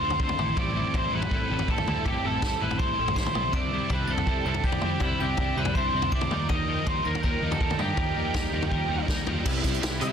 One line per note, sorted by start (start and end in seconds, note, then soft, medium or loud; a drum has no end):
0.00 0.14 D2 medium
0.00 0.18 D3 medium
0.00 0.21 A3 medium
0.00 0.20 C4 medium
0.00 0.20 D4 medium
0.00 0.19 F4 medium
0.00 0.21 A4 medium
0.00 0.20 C5 medium
0.10 floor tom medium
0.19 0.32 D2 medium
0.19 0.37 D3 medium
0.19 0.39 A3 medium
0.19 0.38 C4 medium
0.19 0.38 D4 medium
0.19 0.38 F4 medium
0.19 0.39 A4 medium
0.19 0.58 C5 medium
0.19 kick loud
0.29 floor tom medium
0.29 mid tom medium
0.37 0.51 A1 medium
0.37 0.55 A2 medium
0.37 0.56 E3 loud
0.37 0.56 G3 medium
0.37 0.57 A3 loud
0.37 0.56 C4 loud
0.37 0.57 E4 medium
0.37 0.57 A4 loud
0.37 mid tom medium
0.55 0.82 A1 medium
0.55 0.74 A2 medium
0.55 0.75 E3 loud
0.55 0.74 G3 medium
0.55 0.76 A3 loud
0.55 0.75 C4 medium
0.55 0.76 E4 loud
0.55 0.76 A4 loud
0.55 0.96 D5 loud
0.55 kick loud
0.55 floor tom medium
0.74 0.93 A2 medium
0.74 0.94 E3 medium
0.74 0.94 G3 medium
0.74 0.95 A3 medium
0.74 0.95 C4 medium
0.74 0.95 E4 medium
0.74 0.96 A4 medium
0.94 1.07 A1 medium
0.94 1.12 A2 medium
0.94 1.14 E3 medium
0.94 1.13 G3 medium
0.94 1.14 A3 medium
0.94 1.13 C4 medium
0.94 1.13 E4 medium
0.94 1.14 A4 medium
0.94 1.14 C5 medium
0.94 kick loud
0.94 floor tom medium
1.12 1.25 A1 medium
1.12 1.30 A2 medium
1.12 1.33 E3 medium
1.12 1.31 G3 medium
1.12 1.32 A3 medium
1.12 1.32 C4 medium
1.12 1.33 E4 medium
1.12 1.32 A4 medium
1.12 1.71 B4 medium
1.22 floor tom medium
1.31 1.44 A1 medium
1.31 1.49 A2 medium
1.31 1.51 E3 medium
1.31 1.50 G3 loud
1.31 1.50 A3 loud
1.31 1.51 C4 loud
1.31 1.51 E4 loud
1.31 1.50 A4 loud
1.31 kick loud
1.50 1.62 A1 medium
1.50 1.67 A2 medium
1.50 1.69 E3 medium
1.50 1.68 G3 medium
1.50 1.69 A3 medium
1.50 1.69 C4 medium
1.50 1.69 E4 medium
1.50 1.69 A4 medium
1.59 floor tom medium
1.68 1.81 A1 medium
1.68 1.86 A2 medium
1.68 1.88 E3 medium
1.68 1.88 G3 medium
1.68 1.87 A3 medium
1.68 1.88 C4 medium
1.68 1.88 E4 medium
1.68 1.88 A4 medium
1.68 2.05 A4 medium
1.68 kick medium
1.78 floor tom medium
1.78 mid tom medium
1.87 1.99 D2 medium
1.87 2.04 A2 medium
1.87 2.06 E3 medium
1.87 2.05 G3 medium
1.87 2.06 A3 loud
1.87 2.06 C4 medium
1.87 2.07 E4 loud
1.87 2.06 A4 medium
1.87 mid tom medium
2.05 2.18 A1 medium
2.05 2.23 A2 medium
2.05 2.24 E3 medium
2.05 2.24 G3 medium
2.05 2.24 A3 medium
2.05 2.25 C4 medium
2.05 2.25 E4 medium
2.05 2.25 G4 medium
2.05 2.25 A4 loud
2.05 kick medium
2.05 floor tom medium
2.24 2.37 A1 medium
2.24 2.41 A2 medium
2.24 2.43 E3 medium
2.24 2.43 G3 medium
2.24 2.43 A3 medium
2.24 2.44 C4 medium
2.24 2.44 E4 medium
2.24 2.61 A4 medium
2.24 2.44 A4 medium
2.42 2.55 A1 medium
2.42 2.59 A2 medium
2.42 2.62 E3 loud
2.42 2.60 G3 medium
2.42 2.61 A3 medium
2.42 2.61 C4 medium
2.42 2.62 E4 medium
2.42 2.61 A4 medium
2.42 kick loud
2.42 snare medium
2.42 floor tom medium
2.61 2.74 A1 loud
2.61 2.77 A2 medium
2.61 2.80 E3 medium
2.61 2.79 G3 medium
2.61 2.80 A3 medium
2.61 2.80 C4 medium
2.61 2.79 E4 loud
2.61 2.79 A4 medium
2.61 2.78 B4 medium
2.71 floor tom medium
2.78 2.92 A1 medium
2.78 2.97 A2 medium
2.78 2.98 E3 loud
2.78 2.98 G3 medium
2.78 2.98 A3 medium
2.78 2.98 C4 loud
2.78 2.99 E4 loud
2.78 2.99 A4 loud
2.78 3.16 C5 medium
2.78 3.14 C7 medium
2.78 kick loud
2.98 3.11 A1 medium
2.98 3.14 A2 medium
2.98 3.17 E3 medium
2.98 3.16 G3 medium
2.98 3.16 A3 medium
2.98 3.16 C4 medium
2.98 3.17 E4 medium
2.98 3.16 A4 medium
3.08 floor tom medium
3.15 3.29 A1 medium
3.15 3.33 A2 medium
3.15 3.34 E3 medium
3.15 3.35 G3 medium
3.15 3.34 A3 medium
3.15 3.35 C4 medium
3.15 3.36 E4 medium
3.15 3.35 A4 medium
3.15 3.51 C5 loud
3.15 3.51 C7 medium
3.15 kick loud
3.15 snare medium
3.26 floor tom medium
3.26 mid tom medium
3.34 3.48 B1 medium
3.34 3.52 A2 medium
3.34 3.53 E3 medium
3.34 3.53 G3 medium
3.34 3.53 A3 medium
3.34 3.53 C4 medium
3.34 3.53 E4 medium
3.34 3.53 A4 medium
3.34 mid tom medium
3.52 3.78 C2 medium
3.52 3.72 C3 medium
3.52 3.72 G3 medium
3.52 3.72 C4 loud
3.52 3.73 D4 loud
3.52 3.73 E4 loud
3.52 3.91 D5 loud
3.52 3.88 D7 medium
3.52 kick loud
3.52 floor tom medium
3.72 3.90 C3 medium
3.72 3.90 G3 medium
3.72 3.91 C4 medium
3.72 3.92 D4 medium
3.72 3.92 E4 medium
3.90 4.03 C2 medium
3.90 4.07 C3 medium
3.90 4.09 G3 medium
3.90 4.08 C4 medium
3.90 4.09 D4 medium
3.90 4.09 E4 medium
3.90 4.10 B4 medium
3.90 4.08 B6 medium
3.90 kick loud
3.90 floor tom medium
4.08 4.21 C2 loud
4.08 4.25 C3 medium
4.08 4.27 G3 medium
4.08 4.26 C4 medium
4.08 4.27 D4 medium
4.08 4.27 E4 medium
4.08 4.45 A4 medium
4.08 4.43 A6 medium
4.18 floor tom medium
4.26 4.40 C2 medium
4.26 4.44 C3 loud
4.26 4.46 G3 medium
4.26 4.46 C4 loud
4.26 4.46 D4 loud
4.26 4.46 E4 loud
4.26 kick loud
4.45 4.58 C2 medium
4.45 4.63 C3 medium
4.45 4.65 G3 medium
4.45 4.64 C4 medium
4.45 4.65 D4 medium
4.45 4.65 E4 medium
4.45 4.64 A4 loud
4.45 4.63 A6 medium
4.54 floor tom medium
4.64 4.77 C2 medium
4.64 4.82 C3 medium
4.64 4.84 G3 medium
4.64 4.83 C4 medium
4.64 4.83 D4 medium
4.64 4.84 E4 medium
4.64 5.03 G4 loud
4.64 5.01 G6 medium
4.64 kick loud
4.72 floor tom medium
4.72 mid tom medium
4.81 4.96 F2 medium
4.81 5.01 C3 medium
4.81 5.03 G3 medium
4.81 5.02 C4 medium
4.81 5.03 D4 medium
4.81 5.03 E4 medium
4.81 mid tom medium
5.00 5.14 C2 medium
5.00 5.19 C3 medium
5.00 5.20 G3 medium
5.00 5.20 C4 medium
5.00 5.21 E4 loud
5.00 5.19 E6 medium
5.00 kick loud
5.00 floor tom medium
5.04 5.21 D4 medium
5.04 5.21 E4 medium
5.20 5.33 C2 medium
5.20 5.38 C3 medium
5.20 5.39 G3 medium
5.20 5.39 C4 medium
5.20 5.39 D4 medium
5.20 5.40 E4 medium
5.20 5.58 G4 medium
5.20 5.55 G6 medium
5.37 5.51 C2 medium
5.37 5.55 C3 medium
5.37 5.57 G3 medium
5.37 5.57 C4 medium
5.37 5.58 D4 medium
5.37 5.58 E4 loud
5.37 kick loud
5.37 floor tom medium
5.56 5.69 C2 loud
5.56 5.74 C3 medium
5.56 5.76 G3 medium
5.56 5.76 C4 medium
5.56 5.76 D4 medium
5.56 5.76 E4 medium
5.56 5.75 B4 medium
5.56 5.75 B6 medium
5.65 floor tom medium
5.75 5.88 C2 medium
5.75 5.93 C3 medium
5.75 5.94 G3 loud
5.75 5.94 C4 loud
5.75 5.94 D4 loud
5.75 5.94 E4 loud
5.75 6.12 C5 loud
5.75 6.10 C7 medium
5.75 kick loud
5.93 6.06 C2 medium
5.93 6.11 C3 medium
5.93 6.12 G3 medium
5.93 6.12 C4 medium
5.93 6.12 D4 medium
5.93 6.13 E4 medium
6.02 floor tom medium
6.12 6.25 C2 medium
6.12 6.29 C3 medium
6.12 6.30 G3 medium
6.12 6.30 C4 medium
6.12 6.30 D4 medium
6.12 6.31 E4 medium
6.12 6.49 D5 loud
6.12 6.47 D7 medium
6.12 kick loud
6.21 floor tom medium
6.21 mid tom medium
6.30 6.44 D#2 medium
6.30 6.48 D#3 medium
6.30 6.49 F3 loud
6.30 6.50 G3 loud
6.30 6.50 A#3 medium
6.30 6.51 D#4 medium
6.30 6.51 A#4 loud
6.30 mid tom medium
6.49 6.75 D#2 medium
6.49 6.67 D#3 medium
6.49 6.68 F3 medium
6.49 6.68 G3 loud
6.49 6.69 A#3 loud
6.49 6.69 D#4 loud
6.49 6.69 A#4 loud
6.49 6.87 D#5 loud
6.49 6.84 D#7 medium
6.49 kick medium
6.49 floor tom medium
6.68 6.85 D#3 medium
6.68 6.86 F3 medium
6.68 6.86 G3 medium
6.68 6.88 A#3 medium
6.68 6.87 D#4 medium
6.68 6.88 A#4 medium
6.86 6.99 D#2 medium
6.86 7.05 D#3 medium
6.86 7.05 F3 medium
6.86 7.05 G3 medium
6.86 7.07 A#3 loud
6.86 7.06 D#4 medium
6.86 7.06 A#4 medium
6.86 7.06 C5 medium
6.86 7.04 C7 medium
6.86 kick loud
6.86 floor tom medium
7.05 7.18 D#2 loud
7.05 7.22 D#3 medium
7.05 7.23 F3 medium
7.05 7.24 G3 loud
7.05 7.24 A#3 medium
7.05 7.24 D#4 medium
7.05 7.22 A#4 medium
7.05 7.24 A#4 medium
7.05 7.22 A#6 medium
7.15 floor tom medium
7.23 7.37 D#2 medium
7.23 7.40 D#3 medium
7.23 7.41 F3 loud
7.23 7.42 G3 loud
7.23 7.43 A#3 loud
7.23 7.41 D#4 loud
7.23 7.51 A#4 loud
7.23 7.42 A#4 medium
7.23 7.49 A#6 medium
7.23 kick medium
7.42 7.55 D#2 medium
7.42 7.58 D#3 medium
7.42 7.59 F3 medium
7.42 7.60 G3 medium
7.42 7.61 A#3 medium
7.42 7.59 D#4 medium
7.42 7.60 A#4 medium
7.52 7.80 A4 medium
7.52 7.78 A6 medium
7.52 floor tom medium
7.59 7.73 D#2 medium
7.59 7.76 D#3 medium
7.59 7.77 F3 medium
7.59 7.78 G3 loud
7.59 7.79 A#3 medium
7.59 7.78 D#4 medium
7.59 7.78 A#4 loud
7.59 kick loud
7.70 floor tom medium
7.70 mid tom medium
7.77 7.92 G2 medium
7.77 7.95 D#3 medium
7.77 7.95 F3 medium
7.77 7.96 G3 medium
7.77 7.98 A#3 medium
7.77 7.97 D#4 medium
7.77 9.05 G4 medium
7.77 7.97 A#4 medium
7.77 9.05 G6 medium
7.77 mid tom medium
7.96 8.10 D#2 medium
7.96 8.13 D#3 medium
7.96 8.14 F3 loud
7.96 8.15 G3 loud
7.96 8.16 A#3 loud
7.96 8.15 D#4 loud
7.96 8.16 A#4 loud
7.96 kick loud
7.96 floor tom medium
8.15 8.29 D#2 medium
8.15 8.32 D#3 medium
8.15 8.33 F3 medium
8.15 8.33 G3 medium
8.15 8.34 A#3 medium
8.15 8.34 D#4 medium
8.15 8.34 A#4 medium
8.33 8.47 D#2 medium
8.33 8.51 D#3 medium
8.33 8.52 F3 medium
8.33 8.52 G3 medium
8.33 8.53 A#3 medium
8.33 8.52 D#4 medium
8.33 8.53 A#4 medium
8.33 kick loud
8.33 snare medium
8.33 floor tom medium
8.52 8.66 D#2 loud
8.52 8.69 D#3 medium
8.52 8.70 F3 medium
8.52 8.71 G3 medium
8.52 8.70 A#3 medium
8.52 8.71 D#4 medium
8.52 8.71 A#4 medium
8.62 floor tom medium
8.70 8.85 D#2 medium
8.70 8.88 D#3 medium
8.70 8.88 F3 loud
8.70 8.89 G3 loud
8.70 8.89 A#3 medium
8.70 8.90 D#4 medium
8.70 8.90 A#4 loud
8.70 kick loud
8.89 9.02 D#2 medium
8.89 9.07 D#3 medium
8.89 9.08 F3 medium
8.89 9.08 G3 medium
8.89 9.07 A#3 medium
8.89 9.09 D#4 medium
8.89 9.09 A#4 medium
9.08 9.21 D#2 medium
9.08 9.25 D#3 medium
9.08 9.26 F3 medium
9.08 9.27 G3 medium
9.08 9.26 A#3 medium
9.08 9.27 D#4 medium
9.08 9.27 A#4 medium
9.08 kick loud
9.08 snare medium
9.26 9.40 D#2 medium
9.26 9.44 D#3 medium
9.26 9.45 F3 medium
9.26 9.44 G3 medium
9.26 9.45 A#3 medium
9.26 9.45 D#4 medium
9.26 9.45 A#4 medium
9.26 floor tom medium
9.44 9.61 C2 loud
9.44 9.80 C3 loud
9.44 9.82 G3 loud
9.44 9.82 B3 loud
9.44 9.82 E4 loud
9.44 10.12 G4 medium
9.44 10.12 E5 medium
9.44 10.12 B5 medium
9.44 10.12 C6 medium
9.44 kick loud
9.44 crash loud
9.48 9.83 G4 loud
9.64 9.79 C2 medium
9.64 kick medium
9.64 snare soft
9.64 closed hi-hat medium
9.74 closed hi-hat soft
9.81 9.98 C2 loud
9.81 10.12 C3 loud
9.81 10.12 G3 loud
9.81 10.02 B3 loud
9.81 10.01 E4 loud
9.81 10.00 G4 loud
9.81 snare loud
9.81 closed hi-hat loud
10.01 10.12 C3 loud
10.01 10.12 B3 medium
10.01 10.12 E4 medium
10.01 10.12 G4 medium
10.01 10.12 E5 loud
10.01 10.12 E6 medium
10.01 closed hi-hat medium